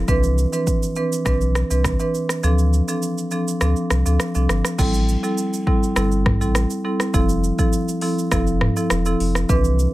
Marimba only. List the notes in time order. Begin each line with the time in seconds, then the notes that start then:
0.08 E3 C4 D4 B4
0.53 E3 C4 D4 B4
0.96 E3 C4 D4 B4
1.25 E3 C4 D4 B4
1.70 E3 C4 D4 B4
2.00 E3 C4 D4 B4
2.43 F3 C4 D4 A4
2.88 F3 C4 D4 A4
3.32 F3 C4 D4 A4
3.61 F3 C4 D4 A4
4.06 F3 C4 D4 A4
4.35 F3 C4 D4 A4
4.79 G3 C4 E4 A4
5.23 G3 C4 E4 A4
5.67 G3 C4 E4 A4
5.96 G3 C4 E4 A4
6.41 G3 C4 E4 A4
6.84 G3 C4 E4 A4
7.14 F3 C4 E4 A4
7.58 F3 C4 E4 A4
8.02 F3 C4 E4 A4
8.31 F3 C4 E4 A4
8.76 F3 C4 E4 A4
9.06 F3 C4 E4 A4
9.49 E3 C4 D4 B4